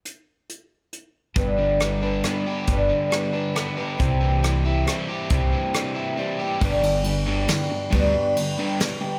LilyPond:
<<
  \new Staff \with { instrumentName = "Twelve-string acoustic guitar" } { \time 3/4 \key g \major \tempo 4 = 137 r2. | <g, d g b d' b'>4 <g b d' b'>8 <g b d' b'>8 <g b d' b'>4 | <g, d g b d' b'>4 <g b d' b'>8 <g b d' b'>8 <g b d' b'>8 <g b d' b'>8 | <c g c' e' g'>4 <g c' e' g'>8 <c' e' g'>8 <g c' e' g'>4 |
<c g c' e' g'>4 <g c' e' g'>4 <g c' e' g'>8 <c' e' g'>8 | <g, d g b d' g'>4 <g b d' g'>4 <g b d' g'>4 | <g, d g b d' g'>4 <g b d' g'>8 <g b d' g'>8 <g b d' g'>8 <g b d' g'>8 | }
  \new Staff \with { instrumentName = "Overdriven electric guitar" } { \clef bass \time 3/4 \key g \major r2. | g,8 d8 g8 d'8 b8 g'8 | g,8 d8 g8 d'8 b8 g'8 | c8 e8 e8 e'8 g8 g'8 |
c8 e8 e8 e'8 g8 g'8 | <g, d g>8 <g, d>8 <g, d>8 <g, d g>8 <g, d>8 <g, d>8 | <g, d g>8 <g, d>8 <g, d>8 <g, d g>8 <g, d>8 <g, d>8 | }
  \new Staff \with { instrumentName = "Upright bass" } { \clef bass \time 3/4 \key g \major r2. | g,,2 r4 | g,,8 r2 r8 | c,2 r4 |
c,8 r2 r8 | g,,2 r4 | d,8 r2 r8 | }
  \new DrumStaff \with { instrumentName = "Drums" } \drummode { \time 3/4 hh4 hh4 hh4 | <hh bd>4 <hh ss>4 <hh ss>4 | <hh bd>4 <hh ss>4 <hh ss>4 | <hh bd>4 <hh ss>4 <hh ss>4 |
<hh bd>4 <hh ss>4 r4 | <bd cymr>8 cymr8 cymr4 <cymr sn>4 | <bd cymr>4 cymr4 <cymr sn>4 | }
>>